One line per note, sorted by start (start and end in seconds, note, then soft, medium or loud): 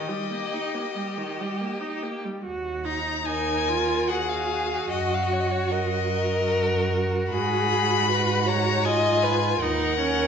0.00 0.58 D#3 medium
0.00 2.23 G4 soft
0.00 2.02 D#5 medium
0.08 0.33 G3 soft
0.31 0.55 A#3 soft
0.53 0.76 D#4 soft
0.75 0.98 A#3 soft
0.96 1.19 G3 soft
1.18 1.42 D#3 soft
1.41 1.63 G3 soft
1.61 1.82 A#3 soft
1.81 2.05 D#4 soft
2.03 2.26 A#3 soft
2.25 2.44 G3 soft
2.44 4.86 D#2 soft
2.44 2.87 F#4 soft
2.85 3.26 D#4 soft
2.85 3.26 A#5 medium
3.25 3.69 D#4 soft
3.25 4.11 A#4 soft
3.25 4.10 G#5 medium
3.68 4.09 F4 medium
4.07 6.48 F#4 soft
4.07 4.92 G#4 medium
4.07 4.31 F#5 medium
4.29 4.89 F5 medium
4.90 7.27 F#2 soft
4.90 5.72 F#4 soft
4.90 5.16 D#5 medium
5.14 5.24 F5 soft
5.23 5.35 D#5 medium
5.33 5.42 C#5 medium
5.40 5.53 D#5 medium
5.51 5.73 C#5 medium
5.71 7.34 A#4 medium
5.71 6.92 D#5 medium
6.49 8.88 F#4 soft
7.30 9.58 G#2 medium
7.30 8.10 G#4 medium
7.30 8.50 B5 medium
8.11 8.49 B4 medium
8.47 8.87 C#5 medium
8.47 8.86 A#5 medium
8.85 9.64 F4 medium
8.85 9.25 D#5 medium
8.85 9.62 G#5 medium
9.23 9.59 B4 medium
9.60 10.27 D#2 medium
9.60 9.99 D#4 medium
9.60 10.27 A#4 medium
9.60 10.27 F#5 medium
10.00 10.27 C#4 medium